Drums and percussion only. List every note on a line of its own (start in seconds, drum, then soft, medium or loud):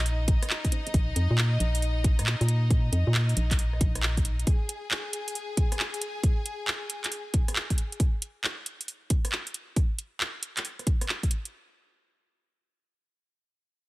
0.06 closed hi-hat medium
0.28 kick loud
0.28 closed hi-hat loud
0.43 cross-stick medium
0.43 closed hi-hat medium
0.50 clap loud
0.65 kick medium
0.65 closed hi-hat soft
0.72 closed hi-hat loud
0.87 closed hi-hat medium
0.94 kick loud
0.94 closed hi-hat medium
1.16 closed hi-hat loud
1.38 clap loud
1.60 closed hi-hat loud
1.75 closed hi-hat medium
1.82 closed hi-hat medium
2.04 kick loud
2.04 closed hi-hat loud
2.19 cross-stick medium
2.19 closed hi-hat medium
2.26 clap loud
2.41 closed hi-hat soft
2.48 closed hi-hat loud
2.70 kick loud
2.70 closed hi-hat medium
2.93 closed hi-hat loud
3.15 clap loud
3.29 closed hi-hat soft
3.37 closed hi-hat medium
3.51 kick medium
3.51 clap medium
3.51 closed hi-hat medium
3.59 closed hi-hat medium
3.73 cross-stick soft
3.81 kick loud
3.81 closed hi-hat loud
3.95 cross-stick medium
3.95 closed hi-hat medium
4.03 clap loud
4.17 kick medium
4.17 closed hi-hat soft
4.25 closed hi-hat loud
4.39 closed hi-hat medium
4.47 kick loud
4.47 closed hi-hat medium
4.69 closed hi-hat loud
4.91 clap loud
5.13 closed hi-hat loud
5.28 closed hi-hat medium
5.35 closed hi-hat medium
5.57 kick loud
5.57 closed hi-hat loud
5.72 cross-stick medium
5.72 closed hi-hat medium
5.79 clap loud
5.94 closed hi-hat medium
6.01 closed hi-hat loud
6.23 kick loud
6.23 closed hi-hat medium
6.46 closed hi-hat loud
6.68 clap loud
6.90 closed hi-hat loud
7.04 clap medium
7.04 closed hi-hat medium
7.12 closed hi-hat medium
7.34 kick loud
7.34 closed hi-hat loud
7.48 cross-stick medium
7.48 closed hi-hat medium
7.56 clap loud
7.70 kick medium
7.70 closed hi-hat medium
7.78 closed hi-hat loud
7.92 closed hi-hat medium
8.00 kick loud
8.00 closed hi-hat medium
8.22 closed hi-hat loud
8.44 clap loud
8.66 closed hi-hat loud
8.81 closed hi-hat medium
8.88 closed hi-hat medium
9.10 kick loud
9.10 closed hi-hat loud
9.25 cross-stick medium
9.25 closed hi-hat medium
9.32 clap loud
9.47 closed hi-hat medium
9.54 closed hi-hat loud
9.76 kick loud
9.76 closed hi-hat medium
9.98 closed hi-hat loud
10.21 clap loud
10.43 closed hi-hat loud
10.57 clap medium
10.57 closed hi-hat medium
10.65 closed hi-hat medium
10.79 cross-stick soft
10.79 closed hi-hat soft
10.87 kick loud
10.87 closed hi-hat loud
11.01 cross-stick medium
11.01 closed hi-hat medium
11.09 clap loud
11.23 kick medium
11.23 closed hi-hat medium
11.31 closed hi-hat loud
11.45 closed hi-hat medium